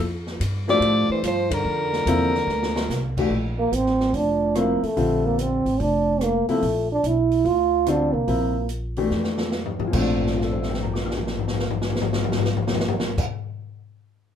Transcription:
0.00 F2
0.27 snare
0.40 G2, hi-hat pedal, ride
0.67 F3 A3 D4 E4 G4 D5, snare
0.80 A2, ride
1.09 E3 C5, muted upright bass stroke
1.23 G2 F3, hi-hat pedal, ride
1.27 C5
1.51 D3 A#4, kick, ride
1.64 F2
1.93 snare
2.06 E2 C3 F3 A#3 E4, hi-hat pedal, ride
2.35 snare
2.47 D2, snare
2.63 snare
2.76 snare
2.89 C2, snare, hi-hat pedal
3.17 E3 A3 D4 G4, kick, crash
3.30 A#1
3.59 A#3
3.72 A1 C4, closed hi-hat
3.86 snare
4.00 snare
4.13 F1 D4, open hi-hat
4.55 C3 F3 A#3 E4, cross-stick, closed hi-hat
4.83 A3, muted upright bass stroke, open hi-hat
4.97 A#1 D3 G3 C4 F4, open hi-hat
5.25 A#3
5.39 C4, closed hi-hat
5.65 A1, open hi-hat
5.80 F1 D4, open hi-hat
6.21 A#3, cross-stick, closed hi-hat
6.48 C3 F3 A3 A#3 E4, muted upright bass stroke, open hi-hat
6.62 A#1, open hi-hat
6.92 D4
7.04 B1 E4, closed hi-hat
7.32 open hi-hat
7.45 D2 F4, open hi-hat
7.86 D3 G3 C4 D4 F4, cross-stick, closed hi-hat
8.13 C2 A#3
8.28 A#1 C3 F3 A#3 E4, open hi-hat
8.69 closed hi-hat
8.97 E3 A3 D4 G4, open hi-hat
9.10 F2, snare
9.24 snare
9.38 snare
9.52 snare
9.65 floor tom
9.79 A1, floor tom
9.87 A#2 F3
9.93 A#1 A3 C4, kick, crash
9.99 D4
10.21 floor tom
10.27 snare
10.32 F4, floor tom
10.41 A4, snare
10.52 C5, floor tom
10.61 E5, snare
10.69 G5, floor tom
10.74 snare
10.82 A#5, floor tom
10.94 D6, snare
11.05 F6, floor tom
11.11 snare
11.17 floor tom
11.27 snare
11.39 floor tom
11.48 snare
11.53 floor tom
11.59 snare
11.70 floor tom
11.82 snare
11.90 floor tom
11.96 snare
12.01 floor tom
12.13 snare
12.24 floor tom
12.32 snare
12.38 floor tom
12.45 snare
12.56 floor tom
12.67 snare
12.74 floor tom
12.80 snare
12.88 floor tom
13.00 snare
13.18 kick, crash

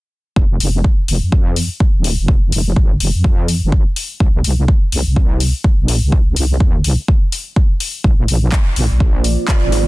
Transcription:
0.36 F1, kick
0.60 F1, open hi-hat
0.84 kick
1.08 F1, open hi-hat
1.23 F2
1.32 kick
1.56 open hi-hat
1.80 kick
1.95 D#1
2.04 open hi-hat
2.19 F1
2.28 kick
2.52 F1, open hi-hat
2.76 G#1, kick
3.00 F1, open hi-hat
3.15 F2
3.24 kick
3.48 open hi-hat
3.63 G1
3.72 kick
3.96 open hi-hat
4.20 C2, kick
4.44 C2, open hi-hat
4.68 kick
4.92 C2, open hi-hat
5.07 C2
5.16 kick
5.40 open hi-hat
5.64 kick
5.79 A#1
5.88 open hi-hat
6.03 C2
6.12 kick
6.36 C2, open hi-hat
6.60 D#2, kick
6.84 C2, open hi-hat
7.08 kick
7.32 open hi-hat
7.56 kick
7.80 open hi-hat
8.04 A#1 A#3 F4 C5 D5, kick
8.28 A#1, open hi-hat
8.52 kick, clap
8.76 A#1, open hi-hat
8.91 A#1
9.00 kick
9.24 open hi-hat
9.48 kick, clap
9.63 G#1
9.72 open hi-hat

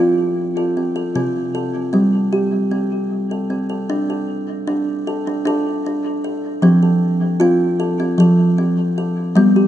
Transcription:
Already playing: F4
0.00 C4
0.57 A4
0.77 C4
0.96 A4
1.15 C3 C4
1.55 A4
1.93 G3 C4
2.33 G4
2.71 C4
3.31 A4
3.50 C4
3.70 A4
3.90 D4
4.10 A4
4.67 D4
5.07 A4
5.27 D4
5.45 D4 A4
5.86 D4
6.24 A4
6.62 F3 C4
6.83 A4
7.40 C4 F4
7.80 A4
8.00 C4
8.18 F3 A4
8.58 C4
8.98 A4
9.35 G3 B3
9.56 G4

